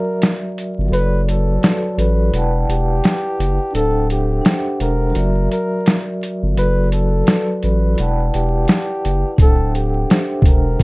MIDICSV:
0, 0, Header, 1, 5, 480
1, 0, Start_track
1, 0, Key_signature, 1, "minor"
1, 0, Tempo, 705882
1, 621, Time_signature, 4, 2, 24, 8
1, 7364, End_track
2, 0, Start_track
2, 0, Title_t, "Vibraphone"
2, 0, Program_c, 0, 11
2, 0, Control_c, 0, 64, 127
2, 0, Note_on_c, 0, 54, 82
2, 0, Note_on_c, 0, 66, 73
2, 0, Note_on_c, 0, 70, 82
2, 0, Note_on_c, 0, 74, 78
2, 0, Note_on_c, 0, 76, 94
2, 518, Note_off_c, 0, 54, 0
2, 523, Note_off_c, 0, 66, 0
2, 528, Note_off_c, 0, 70, 0
2, 537, Note_off_c, 0, 74, 0
2, 542, Note_off_c, 0, 76, 0
2, 585, Note_on_c, 0, 54, 78
2, 598, Note_on_c, 0, 66, 64
2, 609, Note_on_c, 0, 69, 66
2, 623, Note_on_c, 0, 71, 68
2, 630, Control_c, 0, 64, 0
2, 632, Note_on_c, 0, 73, 65
2, 679, Note_on_c, 0, 74, 82
2, 682, Note_off_c, 0, 73, 0
2, 742, Control_c, 0, 64, 127
2, 1036, Note_off_c, 0, 54, 0
2, 1043, Note_off_c, 0, 66, 0
2, 1048, Note_off_c, 0, 69, 0
2, 1055, Note_off_c, 0, 71, 0
2, 1083, Note_off_c, 0, 74, 0
2, 1092, Note_on_c, 0, 54, 69
2, 1101, Note_on_c, 0, 66, 67
2, 1114, Note_on_c, 0, 69, 72
2, 1125, Note_on_c, 0, 71, 62
2, 1136, Note_on_c, 0, 74, 80
2, 1567, Note_on_c, 0, 64, 79
2, 1569, Note_off_c, 0, 71, 0
2, 1577, Note_off_c, 0, 54, 0
2, 1577, Note_on_c, 0, 71, 78
2, 1579, Note_off_c, 0, 74, 0
2, 1581, Note_off_c, 0, 66, 0
2, 1587, Note_off_c, 0, 69, 0
2, 1587, Note_on_c, 0, 74, 67
2, 1591, Control_c, 0, 64, 0
2, 1599, Note_on_c, 0, 78, 76
2, 1607, Note_on_c, 0, 79, 81
2, 1617, Note_on_c, 0, 81, 96
2, 1716, Control_c, 0, 64, 127
2, 2439, Note_off_c, 0, 64, 0
2, 2443, Note_off_c, 0, 71, 0
2, 2449, Note_off_c, 0, 74, 0
2, 2454, Note_off_c, 0, 78, 0
2, 2459, Note_off_c, 0, 79, 0
2, 2464, Note_off_c, 0, 81, 0
2, 2526, Note_on_c, 0, 62, 81
2, 2539, Note_on_c, 0, 69, 69
2, 2549, Note_on_c, 0, 72, 64
2, 2551, Control_c, 0, 64, 0
2, 2562, Note_on_c, 0, 76, 70
2, 2576, Note_on_c, 0, 78, 64
2, 2613, Note_off_c, 0, 78, 0
2, 2618, Note_on_c, 0, 79, 80
2, 2662, Control_c, 0, 64, 127
2, 2967, Note_off_c, 0, 62, 0
2, 2973, Note_off_c, 0, 69, 0
2, 2978, Note_off_c, 0, 72, 0
2, 2985, Note_off_c, 0, 76, 0
2, 3001, Note_on_c, 0, 62, 74
2, 3013, Note_off_c, 0, 79, 0
2, 3014, Note_on_c, 0, 67, 65
2, 3027, Note_on_c, 0, 72, 70
2, 3039, Note_on_c, 0, 76, 63
2, 3471, Note_on_c, 0, 54, 83
2, 3481, Note_on_c, 0, 66, 82
2, 3491, Note_off_c, 0, 62, 0
2, 3493, Note_on_c, 0, 70, 86
2, 3498, Note_off_c, 0, 67, 0
2, 3504, Note_off_c, 0, 72, 0
2, 3506, Note_on_c, 0, 74, 77
2, 3510, Note_off_c, 0, 76, 0
2, 3510, Control_c, 0, 64, 0
2, 3522, Note_on_c, 0, 76, 93
2, 3646, Control_c, 0, 64, 127
2, 4350, Note_off_c, 0, 54, 0
2, 4356, Note_off_c, 0, 66, 0
2, 4362, Note_off_c, 0, 70, 0
2, 4368, Note_off_c, 0, 74, 0
2, 4376, Note_off_c, 0, 76, 0
2, 4451, Note_on_c, 0, 54, 76
2, 4463, Note_on_c, 0, 66, 69
2, 4470, Control_c, 0, 64, 0
2, 4473, Note_on_c, 0, 69, 60
2, 4483, Note_on_c, 0, 71, 66
2, 4498, Note_on_c, 0, 74, 74
2, 4590, Control_c, 0, 64, 127
2, 4889, Note_off_c, 0, 54, 0
2, 4895, Note_off_c, 0, 66, 0
2, 4900, Note_off_c, 0, 69, 0
2, 4905, Note_off_c, 0, 71, 0
2, 4912, Note_off_c, 0, 74, 0
2, 4930, Note_on_c, 0, 54, 70
2, 4943, Note_on_c, 0, 66, 60
2, 4956, Note_on_c, 0, 69, 60
2, 4967, Note_on_c, 0, 71, 66
2, 4979, Note_on_c, 0, 74, 70
2, 5410, Note_on_c, 0, 64, 81
2, 5413, Note_off_c, 0, 71, 0
2, 5415, Note_off_c, 0, 54, 0
2, 5418, Note_off_c, 0, 74, 0
2, 5421, Note_on_c, 0, 71, 73
2, 5422, Note_off_c, 0, 66, 0
2, 5426, Note_on_c, 0, 74, 84
2, 5428, Note_off_c, 0, 69, 0
2, 5430, Control_c, 0, 64, 0
2, 5434, Note_on_c, 0, 78, 72
2, 5448, Note_on_c, 0, 79, 72
2, 5455, Note_on_c, 0, 81, 97
2, 5535, Control_c, 0, 64, 127
2, 6280, Note_off_c, 0, 64, 0
2, 6286, Note_off_c, 0, 71, 0
2, 6288, Note_off_c, 0, 74, 0
2, 6292, Note_off_c, 0, 78, 0
2, 6299, Note_off_c, 0, 79, 0
2, 6303, Note_off_c, 0, 81, 0
2, 6367, Note_on_c, 0, 62, 72
2, 6376, Note_on_c, 0, 69, 64
2, 6389, Note_on_c, 0, 72, 59
2, 6391, Control_c, 0, 64, 0
2, 6401, Note_on_c, 0, 76, 70
2, 6413, Note_on_c, 0, 78, 70
2, 6452, Note_off_c, 0, 78, 0
2, 6454, Note_on_c, 0, 79, 85
2, 6496, Control_c, 0, 64, 127
2, 6807, Note_off_c, 0, 62, 0
2, 6811, Note_off_c, 0, 69, 0
2, 6818, Note_off_c, 0, 72, 0
2, 6824, Note_off_c, 0, 76, 0
2, 6849, Note_on_c, 0, 62, 69
2, 6851, Note_off_c, 0, 79, 0
2, 6862, Note_on_c, 0, 67, 55
2, 6877, Note_on_c, 0, 72, 65
2, 6885, Note_on_c, 0, 76, 58
2, 6896, Note_on_c, 0, 79, 66
2, 7325, Note_on_c, 0, 54, 79
2, 7335, Note_off_c, 0, 62, 0
2, 7335, Note_on_c, 0, 66, 75
2, 7341, Note_off_c, 0, 67, 0
2, 7349, Note_off_c, 0, 72, 0
2, 7349, Control_c, 0, 64, 0
2, 7353, Note_off_c, 0, 76, 0
2, 7359, Note_off_c, 0, 79, 0
2, 7364, Note_off_c, 0, 54, 0
2, 7364, Note_off_c, 0, 66, 0
2, 7364, End_track
3, 0, Start_track
3, 0, Title_t, "Flugelhorn"
3, 0, Program_c, 1, 56
3, 0, Note_on_c, 1, 70, 81
3, 272, Note_off_c, 1, 70, 0
3, 632, Note_on_c, 1, 71, 105
3, 843, Note_off_c, 1, 71, 0
3, 879, Note_on_c, 1, 69, 73
3, 1323, Note_off_c, 1, 69, 0
3, 1353, Note_on_c, 1, 71, 73
3, 1800, Note_off_c, 1, 71, 0
3, 1837, Note_on_c, 1, 67, 95
3, 2522, Note_off_c, 1, 67, 0
3, 2552, Note_on_c, 1, 69, 94
3, 2763, Note_off_c, 1, 69, 0
3, 2794, Note_on_c, 1, 67, 72
3, 3240, Note_off_c, 1, 67, 0
3, 3273, Note_on_c, 1, 70, 82
3, 3720, Note_off_c, 1, 70, 0
3, 3752, Note_on_c, 1, 70, 80
3, 4112, Note_off_c, 1, 70, 0
3, 4478, Note_on_c, 1, 71, 103
3, 4686, Note_off_c, 1, 71, 0
3, 4709, Note_on_c, 1, 69, 77
3, 5158, Note_off_c, 1, 69, 0
3, 5196, Note_on_c, 1, 71, 72
3, 5641, Note_off_c, 1, 71, 0
3, 5683, Note_on_c, 1, 67, 82
3, 6365, Note_off_c, 1, 67, 0
3, 6402, Note_on_c, 1, 69, 100
3, 6608, Note_off_c, 1, 69, 0
3, 6638, Note_on_c, 1, 67, 70
3, 7082, Note_off_c, 1, 67, 0
3, 7115, Note_on_c, 1, 70, 68
3, 7364, Note_off_c, 1, 70, 0
3, 7364, End_track
4, 0, Start_track
4, 0, Title_t, "Sub bass"
4, 0, Program_c, 2, 38
4, 533, Note_on_c, 2, 31, 87
4, 616, Note_off_c, 2, 31, 0
4, 620, Note_on_c, 2, 30, 113
4, 1073, Note_off_c, 2, 30, 0
4, 1344, Note_on_c, 2, 33, 90
4, 1566, Note_off_c, 2, 33, 0
4, 1582, Note_on_c, 2, 28, 94
4, 1805, Note_off_c, 2, 28, 0
4, 1824, Note_on_c, 2, 28, 86
4, 2046, Note_off_c, 2, 28, 0
4, 2307, Note_on_c, 2, 30, 92
4, 2443, Note_off_c, 2, 30, 0
4, 2542, Note_on_c, 2, 26, 96
4, 2995, Note_off_c, 2, 26, 0
4, 3265, Note_on_c, 2, 28, 82
4, 3486, Note_off_c, 2, 28, 0
4, 3506, Note_on_c, 2, 30, 90
4, 3727, Note_off_c, 2, 30, 0
4, 4371, Note_on_c, 2, 31, 83
4, 4455, Note_off_c, 2, 31, 0
4, 4466, Note_on_c, 2, 30, 112
4, 4916, Note_off_c, 2, 30, 0
4, 5190, Note_on_c, 2, 33, 81
4, 5409, Note_off_c, 2, 33, 0
4, 5433, Note_on_c, 2, 28, 106
4, 5651, Note_off_c, 2, 28, 0
4, 5671, Note_on_c, 2, 28, 97
4, 5890, Note_off_c, 2, 28, 0
4, 6153, Note_on_c, 2, 30, 90
4, 6286, Note_off_c, 2, 30, 0
4, 6383, Note_on_c, 2, 26, 109
4, 6835, Note_off_c, 2, 26, 0
4, 7092, Note_on_c, 2, 28, 92
4, 7319, Note_off_c, 2, 28, 0
4, 7364, End_track
5, 0, Start_track
5, 0, Title_t, "Drums"
5, 148, Note_on_c, 9, 42, 82
5, 158, Note_on_c, 9, 38, 113
5, 216, Note_off_c, 9, 42, 0
5, 226, Note_off_c, 9, 38, 0
5, 395, Note_on_c, 9, 42, 75
5, 463, Note_off_c, 9, 42, 0
5, 635, Note_on_c, 9, 42, 75
5, 703, Note_off_c, 9, 42, 0
5, 874, Note_on_c, 9, 42, 60
5, 942, Note_off_c, 9, 42, 0
5, 1109, Note_on_c, 9, 42, 71
5, 1115, Note_on_c, 9, 38, 92
5, 1177, Note_off_c, 9, 42, 0
5, 1183, Note_off_c, 9, 38, 0
5, 1350, Note_on_c, 9, 42, 62
5, 1418, Note_off_c, 9, 42, 0
5, 1588, Note_on_c, 9, 42, 79
5, 1656, Note_off_c, 9, 42, 0
5, 1834, Note_on_c, 9, 42, 60
5, 1902, Note_off_c, 9, 42, 0
5, 2066, Note_on_c, 9, 42, 76
5, 2076, Note_on_c, 9, 38, 110
5, 2134, Note_off_c, 9, 42, 0
5, 2144, Note_off_c, 9, 38, 0
5, 2314, Note_on_c, 9, 42, 73
5, 2382, Note_off_c, 9, 42, 0
5, 2549, Note_on_c, 9, 42, 88
5, 2617, Note_off_c, 9, 42, 0
5, 2788, Note_on_c, 9, 42, 54
5, 2856, Note_off_c, 9, 42, 0
5, 3026, Note_on_c, 9, 42, 77
5, 3032, Note_on_c, 9, 38, 102
5, 3094, Note_off_c, 9, 42, 0
5, 3100, Note_off_c, 9, 38, 0
5, 3266, Note_on_c, 9, 42, 59
5, 3334, Note_off_c, 9, 42, 0
5, 3502, Note_on_c, 9, 42, 77
5, 3570, Note_off_c, 9, 42, 0
5, 3750, Note_on_c, 9, 42, 66
5, 3818, Note_off_c, 9, 42, 0
5, 3986, Note_on_c, 9, 42, 85
5, 3995, Note_on_c, 9, 38, 109
5, 4054, Note_off_c, 9, 42, 0
5, 4063, Note_off_c, 9, 38, 0
5, 4237, Note_on_c, 9, 42, 78
5, 4305, Note_off_c, 9, 42, 0
5, 4471, Note_on_c, 9, 42, 79
5, 4539, Note_off_c, 9, 42, 0
5, 4706, Note_on_c, 9, 42, 57
5, 4774, Note_off_c, 9, 42, 0
5, 4943, Note_on_c, 9, 42, 78
5, 4949, Note_on_c, 9, 38, 102
5, 5011, Note_off_c, 9, 42, 0
5, 5017, Note_off_c, 9, 38, 0
5, 5186, Note_on_c, 9, 42, 54
5, 5254, Note_off_c, 9, 42, 0
5, 5425, Note_on_c, 9, 42, 72
5, 5493, Note_off_c, 9, 42, 0
5, 5671, Note_on_c, 9, 42, 62
5, 5739, Note_off_c, 9, 42, 0
5, 5901, Note_on_c, 9, 42, 74
5, 5911, Note_on_c, 9, 38, 116
5, 5969, Note_off_c, 9, 42, 0
5, 5979, Note_off_c, 9, 38, 0
5, 6153, Note_on_c, 9, 42, 73
5, 6221, Note_off_c, 9, 42, 0
5, 6380, Note_on_c, 9, 36, 113
5, 6388, Note_on_c, 9, 42, 83
5, 6448, Note_off_c, 9, 36, 0
5, 6456, Note_off_c, 9, 42, 0
5, 6630, Note_on_c, 9, 42, 50
5, 6698, Note_off_c, 9, 42, 0
5, 6869, Note_on_c, 9, 42, 64
5, 6876, Note_on_c, 9, 38, 90
5, 6937, Note_off_c, 9, 42, 0
5, 6944, Note_off_c, 9, 38, 0
5, 7086, Note_on_c, 9, 36, 89
5, 7109, Note_on_c, 9, 42, 62
5, 7154, Note_off_c, 9, 36, 0
5, 7177, Note_off_c, 9, 42, 0
5, 7342, Note_on_c, 9, 36, 88
5, 7364, Note_off_c, 9, 36, 0
5, 7364, End_track
0, 0, End_of_file